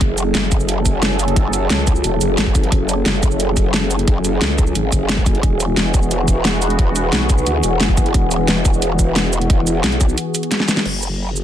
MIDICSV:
0, 0, Header, 1, 4, 480
1, 0, Start_track
1, 0, Key_signature, 3, "minor"
1, 0, Tempo, 338983
1, 11, Time_signature, 4, 2, 24, 8
1, 16195, End_track
2, 0, Start_track
2, 0, Title_t, "Analog synth pad"
2, 0, Program_c, 0, 89
2, 11, Note_on_c, 0, 54, 86
2, 11, Note_on_c, 0, 61, 79
2, 11, Note_on_c, 0, 68, 79
2, 11, Note_on_c, 0, 69, 94
2, 7634, Note_off_c, 0, 61, 0
2, 7635, Note_off_c, 0, 54, 0
2, 7635, Note_off_c, 0, 69, 0
2, 7691, Note_on_c, 0, 52, 85
2, 7691, Note_on_c, 0, 59, 77
2, 7691, Note_on_c, 0, 66, 78
2, 15314, Note_off_c, 0, 52, 0
2, 15314, Note_off_c, 0, 59, 0
2, 15315, Note_off_c, 0, 66, 0
2, 15315, Note_off_c, 0, 68, 0
2, 15369, Note_on_c, 0, 54, 84
2, 15369, Note_on_c, 0, 61, 74
2, 15369, Note_on_c, 0, 68, 78
2, 15369, Note_on_c, 0, 69, 90
2, 16195, Note_off_c, 0, 54, 0
2, 16195, Note_off_c, 0, 61, 0
2, 16195, Note_off_c, 0, 68, 0
2, 16195, Note_off_c, 0, 69, 0
2, 16195, End_track
3, 0, Start_track
3, 0, Title_t, "Wobble bass"
3, 0, Program_c, 1, 39
3, 11, Note_on_c, 1, 30, 100
3, 472, Note_off_c, 1, 30, 0
3, 491, Note_on_c, 1, 30, 98
3, 2392, Note_off_c, 1, 30, 0
3, 2411, Note_on_c, 1, 37, 99
3, 2872, Note_off_c, 1, 37, 0
3, 2891, Note_on_c, 1, 28, 98
3, 3112, Note_off_c, 1, 28, 0
3, 3131, Note_on_c, 1, 30, 95
3, 3352, Note_off_c, 1, 30, 0
3, 3371, Note_on_c, 1, 32, 97
3, 3832, Note_off_c, 1, 32, 0
3, 3851, Note_on_c, 1, 30, 99
3, 4312, Note_off_c, 1, 30, 0
3, 4331, Note_on_c, 1, 30, 101
3, 6232, Note_off_c, 1, 30, 0
3, 6251, Note_on_c, 1, 37, 102
3, 6712, Note_off_c, 1, 37, 0
3, 6731, Note_on_c, 1, 32, 96
3, 6952, Note_off_c, 1, 32, 0
3, 6971, Note_on_c, 1, 30, 98
3, 7672, Note_off_c, 1, 30, 0
3, 7691, Note_on_c, 1, 28, 99
3, 8152, Note_off_c, 1, 28, 0
3, 8171, Note_on_c, 1, 28, 100
3, 10072, Note_off_c, 1, 28, 0
3, 10090, Note_on_c, 1, 35, 101
3, 10552, Note_off_c, 1, 35, 0
3, 10570, Note_on_c, 1, 38, 101
3, 10792, Note_off_c, 1, 38, 0
3, 10811, Note_on_c, 1, 28, 100
3, 11032, Note_off_c, 1, 28, 0
3, 11051, Note_on_c, 1, 30, 100
3, 11512, Note_off_c, 1, 30, 0
3, 11531, Note_on_c, 1, 28, 101
3, 11992, Note_off_c, 1, 28, 0
3, 12011, Note_on_c, 1, 28, 102
3, 13912, Note_off_c, 1, 28, 0
3, 13930, Note_on_c, 1, 35, 100
3, 14391, Note_off_c, 1, 35, 0
3, 15371, Note_on_c, 1, 30, 86
3, 16195, Note_off_c, 1, 30, 0
3, 16195, End_track
4, 0, Start_track
4, 0, Title_t, "Drums"
4, 11, Note_on_c, 9, 36, 120
4, 12, Note_on_c, 9, 42, 95
4, 153, Note_off_c, 9, 36, 0
4, 153, Note_off_c, 9, 42, 0
4, 251, Note_on_c, 9, 42, 72
4, 251, Note_on_c, 9, 69, 64
4, 393, Note_off_c, 9, 42, 0
4, 393, Note_off_c, 9, 69, 0
4, 491, Note_on_c, 9, 38, 127
4, 491, Note_on_c, 9, 42, 97
4, 633, Note_off_c, 9, 38, 0
4, 633, Note_off_c, 9, 42, 0
4, 731, Note_on_c, 9, 36, 106
4, 732, Note_on_c, 9, 42, 71
4, 732, Note_on_c, 9, 69, 66
4, 852, Note_off_c, 9, 69, 0
4, 852, Note_on_c, 9, 69, 29
4, 873, Note_off_c, 9, 36, 0
4, 874, Note_off_c, 9, 42, 0
4, 972, Note_off_c, 9, 69, 0
4, 972, Note_on_c, 9, 42, 96
4, 972, Note_on_c, 9, 69, 29
4, 1114, Note_off_c, 9, 42, 0
4, 1114, Note_off_c, 9, 69, 0
4, 1211, Note_on_c, 9, 36, 63
4, 1211, Note_on_c, 9, 42, 73
4, 1211, Note_on_c, 9, 69, 64
4, 1353, Note_off_c, 9, 36, 0
4, 1353, Note_off_c, 9, 42, 0
4, 1353, Note_off_c, 9, 69, 0
4, 1452, Note_on_c, 9, 38, 121
4, 1452, Note_on_c, 9, 42, 103
4, 1593, Note_off_c, 9, 38, 0
4, 1593, Note_off_c, 9, 42, 0
4, 1691, Note_on_c, 9, 42, 69
4, 1691, Note_on_c, 9, 69, 60
4, 1811, Note_off_c, 9, 42, 0
4, 1811, Note_on_c, 9, 42, 40
4, 1833, Note_off_c, 9, 69, 0
4, 1931, Note_on_c, 9, 36, 126
4, 1932, Note_off_c, 9, 42, 0
4, 1932, Note_on_c, 9, 42, 96
4, 2072, Note_off_c, 9, 36, 0
4, 2073, Note_off_c, 9, 42, 0
4, 2171, Note_on_c, 9, 42, 71
4, 2171, Note_on_c, 9, 69, 62
4, 2313, Note_off_c, 9, 42, 0
4, 2313, Note_off_c, 9, 69, 0
4, 2411, Note_on_c, 9, 38, 127
4, 2411, Note_on_c, 9, 42, 100
4, 2552, Note_off_c, 9, 38, 0
4, 2552, Note_off_c, 9, 42, 0
4, 2650, Note_on_c, 9, 42, 70
4, 2650, Note_on_c, 9, 69, 62
4, 2651, Note_on_c, 9, 36, 112
4, 2770, Note_off_c, 9, 69, 0
4, 2770, Note_on_c, 9, 69, 30
4, 2792, Note_off_c, 9, 36, 0
4, 2792, Note_off_c, 9, 42, 0
4, 2891, Note_off_c, 9, 69, 0
4, 2891, Note_on_c, 9, 42, 96
4, 2891, Note_on_c, 9, 69, 29
4, 3032, Note_off_c, 9, 42, 0
4, 3032, Note_off_c, 9, 69, 0
4, 3130, Note_on_c, 9, 42, 74
4, 3130, Note_on_c, 9, 69, 64
4, 3272, Note_off_c, 9, 42, 0
4, 3272, Note_off_c, 9, 69, 0
4, 3371, Note_on_c, 9, 38, 127
4, 3371, Note_on_c, 9, 42, 99
4, 3491, Note_on_c, 9, 36, 64
4, 3512, Note_off_c, 9, 38, 0
4, 3512, Note_off_c, 9, 42, 0
4, 3611, Note_off_c, 9, 36, 0
4, 3611, Note_on_c, 9, 36, 109
4, 3611, Note_on_c, 9, 42, 69
4, 3611, Note_on_c, 9, 69, 59
4, 3731, Note_off_c, 9, 42, 0
4, 3731, Note_on_c, 9, 42, 40
4, 3752, Note_off_c, 9, 36, 0
4, 3752, Note_off_c, 9, 69, 0
4, 3851, Note_off_c, 9, 42, 0
4, 3851, Note_on_c, 9, 36, 127
4, 3851, Note_on_c, 9, 42, 95
4, 3992, Note_off_c, 9, 36, 0
4, 3993, Note_off_c, 9, 42, 0
4, 4092, Note_on_c, 9, 42, 68
4, 4092, Note_on_c, 9, 69, 60
4, 4233, Note_off_c, 9, 42, 0
4, 4233, Note_off_c, 9, 69, 0
4, 4331, Note_on_c, 9, 38, 127
4, 4331, Note_on_c, 9, 42, 102
4, 4473, Note_off_c, 9, 38, 0
4, 4473, Note_off_c, 9, 42, 0
4, 4571, Note_on_c, 9, 36, 117
4, 4571, Note_on_c, 9, 42, 71
4, 4571, Note_on_c, 9, 69, 60
4, 4691, Note_off_c, 9, 69, 0
4, 4691, Note_on_c, 9, 69, 28
4, 4713, Note_off_c, 9, 36, 0
4, 4713, Note_off_c, 9, 42, 0
4, 4811, Note_off_c, 9, 69, 0
4, 4811, Note_on_c, 9, 42, 95
4, 4811, Note_on_c, 9, 69, 27
4, 4953, Note_off_c, 9, 42, 0
4, 4953, Note_off_c, 9, 69, 0
4, 5051, Note_on_c, 9, 36, 67
4, 5051, Note_on_c, 9, 42, 72
4, 5051, Note_on_c, 9, 69, 61
4, 5193, Note_off_c, 9, 36, 0
4, 5193, Note_off_c, 9, 42, 0
4, 5193, Note_off_c, 9, 69, 0
4, 5291, Note_on_c, 9, 38, 127
4, 5291, Note_on_c, 9, 42, 95
4, 5433, Note_off_c, 9, 38, 0
4, 5433, Note_off_c, 9, 42, 0
4, 5531, Note_on_c, 9, 42, 68
4, 5531, Note_on_c, 9, 69, 59
4, 5652, Note_off_c, 9, 42, 0
4, 5652, Note_on_c, 9, 42, 38
4, 5673, Note_off_c, 9, 69, 0
4, 5771, Note_on_c, 9, 36, 125
4, 5772, Note_off_c, 9, 42, 0
4, 5772, Note_on_c, 9, 42, 93
4, 5913, Note_off_c, 9, 36, 0
4, 5913, Note_off_c, 9, 42, 0
4, 6011, Note_on_c, 9, 42, 66
4, 6011, Note_on_c, 9, 69, 56
4, 6153, Note_off_c, 9, 42, 0
4, 6153, Note_off_c, 9, 69, 0
4, 6252, Note_on_c, 9, 38, 126
4, 6252, Note_on_c, 9, 42, 95
4, 6393, Note_off_c, 9, 38, 0
4, 6393, Note_off_c, 9, 42, 0
4, 6491, Note_on_c, 9, 36, 114
4, 6492, Note_on_c, 9, 42, 66
4, 6492, Note_on_c, 9, 69, 59
4, 6611, Note_off_c, 9, 69, 0
4, 6611, Note_on_c, 9, 69, 28
4, 6633, Note_off_c, 9, 36, 0
4, 6633, Note_off_c, 9, 42, 0
4, 6731, Note_off_c, 9, 69, 0
4, 6731, Note_on_c, 9, 42, 93
4, 6731, Note_on_c, 9, 69, 27
4, 6873, Note_off_c, 9, 42, 0
4, 6873, Note_off_c, 9, 69, 0
4, 6971, Note_on_c, 9, 36, 65
4, 6972, Note_on_c, 9, 42, 69
4, 6972, Note_on_c, 9, 69, 60
4, 7113, Note_off_c, 9, 36, 0
4, 7114, Note_off_c, 9, 42, 0
4, 7114, Note_off_c, 9, 69, 0
4, 7212, Note_on_c, 9, 38, 127
4, 7212, Note_on_c, 9, 42, 96
4, 7331, Note_on_c, 9, 36, 66
4, 7353, Note_off_c, 9, 38, 0
4, 7353, Note_off_c, 9, 42, 0
4, 7451, Note_off_c, 9, 36, 0
4, 7451, Note_on_c, 9, 36, 115
4, 7452, Note_on_c, 9, 42, 66
4, 7452, Note_on_c, 9, 69, 54
4, 7572, Note_off_c, 9, 42, 0
4, 7572, Note_on_c, 9, 42, 37
4, 7593, Note_off_c, 9, 36, 0
4, 7594, Note_off_c, 9, 69, 0
4, 7691, Note_on_c, 9, 36, 119
4, 7692, Note_off_c, 9, 42, 0
4, 7692, Note_on_c, 9, 42, 86
4, 7832, Note_off_c, 9, 36, 0
4, 7834, Note_off_c, 9, 42, 0
4, 7932, Note_on_c, 9, 42, 64
4, 7932, Note_on_c, 9, 69, 59
4, 8074, Note_off_c, 9, 42, 0
4, 8074, Note_off_c, 9, 69, 0
4, 8172, Note_on_c, 9, 38, 123
4, 8172, Note_on_c, 9, 42, 93
4, 8314, Note_off_c, 9, 38, 0
4, 8314, Note_off_c, 9, 42, 0
4, 8411, Note_on_c, 9, 36, 105
4, 8412, Note_on_c, 9, 42, 63
4, 8412, Note_on_c, 9, 69, 57
4, 8533, Note_off_c, 9, 69, 0
4, 8533, Note_on_c, 9, 69, 27
4, 8552, Note_off_c, 9, 36, 0
4, 8554, Note_off_c, 9, 42, 0
4, 8652, Note_off_c, 9, 69, 0
4, 8652, Note_on_c, 9, 42, 88
4, 8652, Note_on_c, 9, 69, 28
4, 8794, Note_off_c, 9, 42, 0
4, 8794, Note_off_c, 9, 69, 0
4, 8891, Note_on_c, 9, 36, 61
4, 8892, Note_on_c, 9, 42, 65
4, 8892, Note_on_c, 9, 69, 59
4, 9033, Note_off_c, 9, 36, 0
4, 9034, Note_off_c, 9, 42, 0
4, 9034, Note_off_c, 9, 69, 0
4, 9132, Note_on_c, 9, 38, 125
4, 9132, Note_on_c, 9, 42, 90
4, 9273, Note_off_c, 9, 38, 0
4, 9273, Note_off_c, 9, 42, 0
4, 9371, Note_on_c, 9, 42, 62
4, 9371, Note_on_c, 9, 69, 57
4, 9491, Note_off_c, 9, 42, 0
4, 9491, Note_on_c, 9, 42, 36
4, 9513, Note_off_c, 9, 69, 0
4, 9611, Note_off_c, 9, 42, 0
4, 9611, Note_on_c, 9, 36, 117
4, 9611, Note_on_c, 9, 42, 88
4, 9752, Note_off_c, 9, 36, 0
4, 9753, Note_off_c, 9, 42, 0
4, 9851, Note_on_c, 9, 42, 66
4, 9851, Note_on_c, 9, 69, 60
4, 9993, Note_off_c, 9, 42, 0
4, 9993, Note_off_c, 9, 69, 0
4, 10091, Note_on_c, 9, 38, 120
4, 10091, Note_on_c, 9, 42, 93
4, 10232, Note_off_c, 9, 38, 0
4, 10232, Note_off_c, 9, 42, 0
4, 10331, Note_on_c, 9, 36, 104
4, 10331, Note_on_c, 9, 42, 64
4, 10331, Note_on_c, 9, 69, 60
4, 10451, Note_off_c, 9, 69, 0
4, 10451, Note_on_c, 9, 69, 29
4, 10472, Note_off_c, 9, 42, 0
4, 10473, Note_off_c, 9, 36, 0
4, 10571, Note_off_c, 9, 69, 0
4, 10571, Note_on_c, 9, 42, 87
4, 10571, Note_on_c, 9, 69, 28
4, 10712, Note_off_c, 9, 42, 0
4, 10712, Note_off_c, 9, 69, 0
4, 10811, Note_on_c, 9, 42, 67
4, 10811, Note_on_c, 9, 69, 63
4, 10952, Note_off_c, 9, 42, 0
4, 10952, Note_off_c, 9, 69, 0
4, 11051, Note_on_c, 9, 38, 117
4, 11051, Note_on_c, 9, 42, 92
4, 11171, Note_on_c, 9, 36, 61
4, 11193, Note_off_c, 9, 38, 0
4, 11193, Note_off_c, 9, 42, 0
4, 11291, Note_off_c, 9, 36, 0
4, 11291, Note_on_c, 9, 36, 105
4, 11291, Note_on_c, 9, 42, 64
4, 11291, Note_on_c, 9, 69, 57
4, 11412, Note_off_c, 9, 42, 0
4, 11412, Note_on_c, 9, 42, 35
4, 11433, Note_off_c, 9, 36, 0
4, 11433, Note_off_c, 9, 69, 0
4, 11531, Note_off_c, 9, 42, 0
4, 11531, Note_on_c, 9, 36, 119
4, 11531, Note_on_c, 9, 42, 94
4, 11673, Note_off_c, 9, 36, 0
4, 11673, Note_off_c, 9, 42, 0
4, 11771, Note_on_c, 9, 42, 65
4, 11771, Note_on_c, 9, 69, 64
4, 11913, Note_off_c, 9, 42, 0
4, 11913, Note_off_c, 9, 69, 0
4, 12011, Note_on_c, 9, 38, 119
4, 12011, Note_on_c, 9, 42, 92
4, 12152, Note_off_c, 9, 38, 0
4, 12152, Note_off_c, 9, 42, 0
4, 12251, Note_on_c, 9, 36, 106
4, 12251, Note_on_c, 9, 42, 67
4, 12251, Note_on_c, 9, 69, 64
4, 12371, Note_off_c, 9, 69, 0
4, 12371, Note_on_c, 9, 69, 30
4, 12392, Note_off_c, 9, 36, 0
4, 12393, Note_off_c, 9, 42, 0
4, 12491, Note_off_c, 9, 69, 0
4, 12491, Note_on_c, 9, 42, 94
4, 12491, Note_on_c, 9, 69, 29
4, 12633, Note_off_c, 9, 42, 0
4, 12633, Note_off_c, 9, 69, 0
4, 12731, Note_on_c, 9, 36, 60
4, 12731, Note_on_c, 9, 42, 69
4, 12731, Note_on_c, 9, 69, 64
4, 12872, Note_off_c, 9, 36, 0
4, 12872, Note_off_c, 9, 42, 0
4, 12872, Note_off_c, 9, 69, 0
4, 12970, Note_on_c, 9, 38, 118
4, 12970, Note_on_c, 9, 42, 94
4, 13112, Note_off_c, 9, 38, 0
4, 13112, Note_off_c, 9, 42, 0
4, 13211, Note_on_c, 9, 42, 64
4, 13211, Note_on_c, 9, 69, 62
4, 13331, Note_off_c, 9, 42, 0
4, 13331, Note_on_c, 9, 42, 38
4, 13352, Note_off_c, 9, 69, 0
4, 13450, Note_off_c, 9, 42, 0
4, 13450, Note_on_c, 9, 36, 118
4, 13450, Note_on_c, 9, 42, 94
4, 13592, Note_off_c, 9, 36, 0
4, 13592, Note_off_c, 9, 42, 0
4, 13691, Note_on_c, 9, 42, 71
4, 13691, Note_on_c, 9, 69, 64
4, 13833, Note_off_c, 9, 42, 0
4, 13833, Note_off_c, 9, 69, 0
4, 13930, Note_on_c, 9, 38, 120
4, 13930, Note_on_c, 9, 42, 100
4, 14050, Note_off_c, 9, 42, 0
4, 14050, Note_on_c, 9, 42, 39
4, 14072, Note_off_c, 9, 38, 0
4, 14170, Note_off_c, 9, 42, 0
4, 14170, Note_on_c, 9, 36, 103
4, 14170, Note_on_c, 9, 42, 71
4, 14170, Note_on_c, 9, 69, 65
4, 14290, Note_off_c, 9, 69, 0
4, 14290, Note_on_c, 9, 69, 31
4, 14311, Note_off_c, 9, 42, 0
4, 14312, Note_off_c, 9, 36, 0
4, 14410, Note_off_c, 9, 69, 0
4, 14410, Note_on_c, 9, 42, 97
4, 14410, Note_on_c, 9, 69, 30
4, 14551, Note_off_c, 9, 42, 0
4, 14551, Note_off_c, 9, 69, 0
4, 14650, Note_on_c, 9, 42, 72
4, 14650, Note_on_c, 9, 69, 67
4, 14770, Note_off_c, 9, 42, 0
4, 14770, Note_on_c, 9, 42, 38
4, 14792, Note_off_c, 9, 69, 0
4, 14889, Note_off_c, 9, 42, 0
4, 14889, Note_on_c, 9, 38, 63
4, 14889, Note_on_c, 9, 42, 97
4, 15010, Note_off_c, 9, 38, 0
4, 15010, Note_on_c, 9, 38, 63
4, 15031, Note_off_c, 9, 42, 0
4, 15130, Note_off_c, 9, 38, 0
4, 15130, Note_on_c, 9, 38, 85
4, 15130, Note_on_c, 9, 42, 67
4, 15130, Note_on_c, 9, 69, 62
4, 15250, Note_off_c, 9, 38, 0
4, 15250, Note_off_c, 9, 42, 0
4, 15250, Note_on_c, 9, 38, 86
4, 15250, Note_on_c, 9, 42, 38
4, 15271, Note_off_c, 9, 69, 0
4, 15370, Note_on_c, 9, 49, 79
4, 15392, Note_off_c, 9, 38, 0
4, 15392, Note_off_c, 9, 42, 0
4, 15512, Note_off_c, 9, 49, 0
4, 15610, Note_on_c, 9, 69, 59
4, 15751, Note_off_c, 9, 69, 0
4, 16090, Note_on_c, 9, 69, 60
4, 16195, Note_off_c, 9, 69, 0
4, 16195, End_track
0, 0, End_of_file